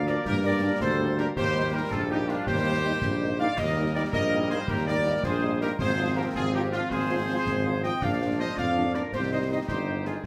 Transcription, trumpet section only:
0.08 0.26 D5 loud
0.26 0.43 A#4 loud
0.45 0.79 D5 loud
0.81 1.15 C5 loud
1.18 1.27 A#4 loud
1.37 1.71 C5 loud
1.74 1.92 A#4 loud
1.92 2.10 A4 loud
2.10 2.27 G4 loud
2.29 2.47 F4 loud
2.47 3.35 C5 loud
3.39 3.56 F5 loud
3.58 3.95 D#5 loud
3.94 4.03 D5 loud
4.13 4.48 D#5 loud
4.50 4.68 C5 loud
4.69 4.87 A#4 loud
4.87 5.21 D5 loud
5.25 5.62 C5 loud
5.61 5.70 A#4 loud
5.80 6.14 C5 loud
6.16 6.25 A#4 loud
6.36 6.53 G#4 loud
6.54 6.62 G4 loud
6.73 6.90 F4 loud
6.92 7.84 C5 loud
7.84 8.01 G5 loud
8.03 8.39 F5 loud
8.39 8.56 D#5 loud
8.58 8.92 F5 loud
8.94 9.02 D5 loud
9.14 9.22 C5 loud
9.33 9.41 D#5 loud
9.51 9.59 D#5 loud
9.70 10.03 C5 loud
10.06 10.24 G#4 medium

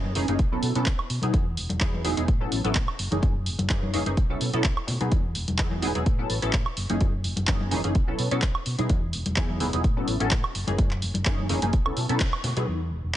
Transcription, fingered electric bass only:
0.00 0.17 F#2 medium
0.15 0.24 F#1 medium
0.28 0.36 F#1 medium
0.63 0.71 B2 medium
0.75 0.83 B2 medium
1.10 1.19 B2 medium
1.23 1.30 B2 medium
1.34 1.59 E2 medium
1.57 1.66 E1 medium
1.70 1.78 E1 loud
2.05 2.13 E1 medium
2.17 2.25 E1 loud
2.28 2.45 A2 medium
2.52 2.61 A1 medium
2.65 2.72 A1 loud
2.76 2.84 A2 medium
2.99 3.08 F#1 medium
3.12 3.19 F#1 medium
3.23 3.48 F#2 medium
3.47 3.55 F#1 medium
3.59 3.66 F#1 loud
3.70 3.95 F#2 medium
3.94 4.02 F#1 medium
4.06 4.14 F#1 medium
4.17 4.34 B1 medium
4.41 4.50 B2 medium
4.54 4.61 B2 loud
4.65 4.73 B1 medium
4.88 4.97 B2 medium
5.01 5.08 B2 medium
5.12 5.37 E2 medium
5.36 5.44 E1 medium
5.48 5.56 E1 loud
5.83 5.91 E1 medium
5.96 6.03 E1 medium
6.06 6.23 A2 medium
6.30 6.39 A1 medium
6.43 6.50 A1 loud
6.54 6.62 A2 medium
6.77 6.86 F#1 medium
6.90 6.97 F#1 medium
7.01 7.26 F#2 medium
7.24 7.33 F#1 medium
7.37 7.45 F#1 loud
7.48 7.73 F#2 medium
7.72 7.80 F#1 medium
7.85 7.92 F#1 loud
7.95 8.12 B1 medium
8.19 8.28 B2 medium
8.32 8.39 B2 loud
8.43 8.51 B1 medium
8.66 8.75 B2 medium
8.79 8.86 B2 medium
8.90 9.15 E2 loud
9.14 9.22 E1 medium
9.26 9.34 E1 loud
9.60 9.69 E1 medium
9.73 9.81 E1 loud
9.84 10.01 A2 medium
10.08 10.17 A1 medium
10.21 10.28 A1 loud
10.32 10.40 A2 medium
10.55 10.64 F#1 medium
10.68 10.75 F#1 medium
10.79 11.04 F#2 loud
11.02 11.11 F#1 medium
11.15 11.22 F#1 loud
11.49 11.58 F#1 medium
11.62 11.70 F#1 loud
11.73 11.90 B1 medium
11.97 12.06 B2 medium
12.09 12.17 B2 loud
12.21 12.29 B1 medium
12.44 12.53 B2 medium
12.57 12.64 B2 loud
12.68 12.93 E2 medium
12.91 13.00 E1 medium
13.04 13.11 E1 medium

